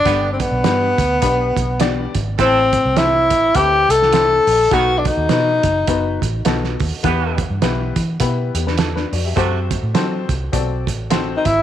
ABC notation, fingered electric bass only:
X:1
M:4/4
L:1/16
Q:"Swing" 1/4=103
K:Em
V:1 name="Fingered electric bass" clef=bass
G,,,3 B,,, G,,2 D,,2 B,,,2 B,,,4 ^G,,,2 | A,,,3 C,,3 A,,,2 D,,2 C,,4 ^A,,,2 | B,,,3 ^D,, B,,2 F,,,2 F,,,2 A,,,2 B,,,2 D,, z | E,,3 G,, B,,,2 E,2 B,,2 E,,4 =F,,2 |
F,,3 A,, F,2 C,,2 B,,,2 A,,,4 ^G,,,2 |]